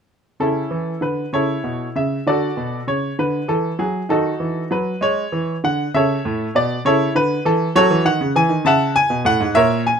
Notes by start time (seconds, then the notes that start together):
0.40 C#3 C#4 E4 A4
0.71 E3
1.01 D3 B4
1.33 C#3 E4 A4 C#5
1.64 B2
1.95 C#3 E5
2.27 D3 F#4 A4 D5
2.57 B2
2.87 C#3 C#5
3.19 D3 B4
3.48 E3 A4
3.79 F#3 G#4
4.09 D#3 D#4 F#4 A4
4.40 E3
4.71 F#3 B4
5.01 G#3 C#5
5.32 E3
5.64 D3 F#5
5.94 C#3 A4 C#5 E5
6.25 A2
6.55 B2 D5
6.85 C#3 E4 A4 C#5
7.15 D3 B4
7.45 E3 A4
7.75 F#3 F#4 A4 C#5
7.90 E3
8.05 D#3 F#5
8.21 C#3
8.36 E3 G#5
8.49 D#3
8.65 C#3 E5 F#5 A5
8.96 G#5
9.10 B2
9.25 A2 F#5
9.40 G#2
9.55 A#2 A#4 C#5 E5
9.87 G#5